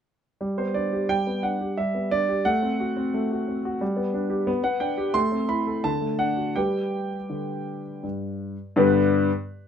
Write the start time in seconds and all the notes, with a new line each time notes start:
0.41 G3
0.58 B3 C5
0.74 D4 D5
0.93 G4
1.09 G3 G5
1.27 B3
1.43 D4 F#5
1.61 G4
1.77 G3 E5
1.95 B3
2.11 D4 D5
2.29 G4
2.45 A3 F#5
2.62 C4
2.80 F#4
2.97 C4
3.14 A3
3.32 F#4
3.48 C4
3.65 F#4
3.81 G3
3.97 B3
4.14 D4
4.30 G4
4.47 B3
4.64 B3 F#5
4.80 D4 G5
4.98 G4
5.14 A3 C6
5.32 C4
5.49 E4 B5
5.67 A4
5.84 D3 A5
6.01 A3
6.19 D4 F#5
6.37 F#4
6.56 G3 G4 B4 G5
7.30 D3
8.03 G2
8.76 G2 D3 B3 D4 G4 B4